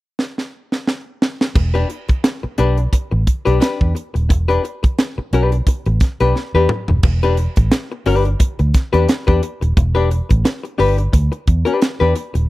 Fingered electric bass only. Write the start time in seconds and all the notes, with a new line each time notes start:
1.56 E1
2.10 muted fingered electric bass stroke
2.44 muted fingered electric bass stroke
2.59 B1
2.93 muted fingered electric bass stroke
3.12 A1
3.47 B1
3.81 E2
4.15 D#1
4.30 E1
4.84 muted fingered electric bass stroke
5.18 muted fingered electric bass stroke
5.33 B1
5.67 muted fingered electric bass stroke
5.86 A1
6.21 B1
6.54 E2
6.89 D#1
7.04 E1
7.58 A1
8.06 G1
8.40 muted fingered electric bass stroke
8.60 D2
8.94 E2
9.28 E2
9.62 D#1
9.77 E1
10.31 A1
10.80 G1
11.14 D2
11.48 E2
12.01 E2
12.35 D#1